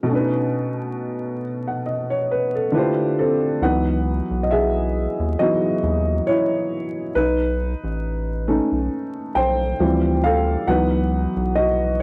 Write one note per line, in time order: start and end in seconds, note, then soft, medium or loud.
0.00 2.66 B2 medium
0.00 0.10 B4 medium
0.06 2.68 A3 medium
0.06 2.69 C#4 medium
0.12 0.18 D4 soft
0.12 1.42 B4 medium
0.19 2.74 D#4 medium
1.67 1.85 F#5 medium
1.86 2.09 D#5 medium
2.10 2.29 C#5 medium
2.31 2.53 B4 medium
2.55 2.96 A4 soft
2.72 3.61 D3 medium
2.72 3.61 A3 medium
2.72 3.15 D4 medium
2.72 3.62 E4 medium
2.72 3.63 F4 medium
2.72 3.19 B4 medium
2.77 3.63 G4 medium
2.77 3.64 C5 medium
3.19 3.59 C4 medium
3.19 3.63 A4 medium
3.62 4.21 C#2 loud
3.62 4.22 E3 medium
3.62 4.22 F#3 soft
3.62 4.23 B3 soft
3.62 4.23 D#4 medium
3.62 4.41 B4 medium
3.62 4.46 F#5 medium
4.31 5.07 B1 medium
4.43 4.50 D#5 medium
4.51 5.35 G#4 medium
4.51 5.34 E5 medium
5.19 5.36 D#2 medium
5.39 5.79 E3 soft
5.39 5.79 F#3 soft
5.39 5.79 B3 soft
5.39 5.79 D#4 soft
5.39 6.23 F#4 medium
5.39 6.29 D#5 medium
5.83 6.21 D#2 medium
6.27 7.11 E4 medium
6.27 7.17 C#5 medium
7.15 7.75 B1 loud
7.15 8.48 D#4 medium
7.15 9.42 B4 loud
7.84 8.60 A1 medium
8.48 9.76 A3 medium
8.48 9.76 C#4 medium
8.48 9.76 D#4 medium
8.72 8.89 B1 medium
9.35 9.74 B1 medium
9.35 10.20 C5 medium
9.35 10.26 G5 loud
9.80 10.56 D2 loud
9.80 10.64 E3 medium
9.80 10.64 F3 medium
9.80 10.64 G3 medium
9.80 10.64 C4 medium
10.24 10.65 A4 medium
10.24 10.69 F5 loud
10.67 11.27 C#2 loud
10.67 11.28 E3 medium
10.67 11.28 F#3 medium
10.67 11.29 B3 soft
10.67 11.29 D#4 medium
10.67 11.53 B4 medium
10.67 11.58 F#5 loud
11.36 12.02 B1 medium
11.55 11.67 F#4 medium
11.55 11.65 D#5 loud